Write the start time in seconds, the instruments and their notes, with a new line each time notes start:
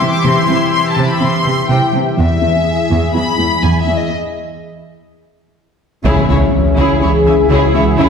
Already playing: analog synth pad E3 E4 G4 E5
0.00 cello section C3, synth pluck G3
0.10 violin section D6
0.24 synth pluck C3, cello section C3, violin section C6
0.48 cello section C3, synth pluck G3
0.74 violin section C6
0.91 violin section A5
0.96 synth pluck C3, cello section C3
1.06 violin section B5
1.21 cello section C3, synth pluck C4, violin section C6
1.45 cello section C3, synth pluck E3
1.69 synth pluck C3, cello section C3, violin section G5
1.93 cello section C3, synth pluck G3
2.17 cello section E2, synth pluck E3, analog synth pad G#4, violin section E5
2.42 cello section E2, synth pluck B3
2.90 cello section E2, synth pluck E3
3.14 cello section E2, synth pluck E4, violin section B5
3.39 cello section E2, synth pluck G#3
3.63 cello section E2, synth pluck E3, violin section G#5
3.80 violin section E5
3.87 cello section E2, synth pluck B3
3.97 violin section D#5
6.05 double bass section C#2, sub bass C#2, cello section C#3, synth pluck C#3, analog synth pad E3 E4 G#4 E5, french horn section C#4, viola section E4, violin section G#4 C#5, taiko, impact
6.29 double bass section C#2, cello section C#3, synth pluck G#3, viola section E4, violin section C#5 E5
6.77 double bass section C#2, cello section C#3, synth pluck C#3, viola section E4, violin section G#4 C#5
7.01 double bass section C#2, cello section C#3, synth pluck C#4, viola section E4, french horn section G#4, violin section C#5 E5
7.25 double bass section C#2, cello section C#3, synth pluck E3, viola section E4, violin section E5 G#5
7.50 double bass section C#2, cello section C#3, synth pluck C#3, viola section E4, french horn section F#4, violin section G#4 C#5
7.67 french horn section E4
7.74 double bass section C#2, cello section C#3, synth pluck G#3, viola section E4, violin section C#5 E5
7.85 french horn section F#4
7.98 double bass section C#2, synth pluck C#3, cello section C#3, viola section E4, french horn section E4, violin section G#4 C#5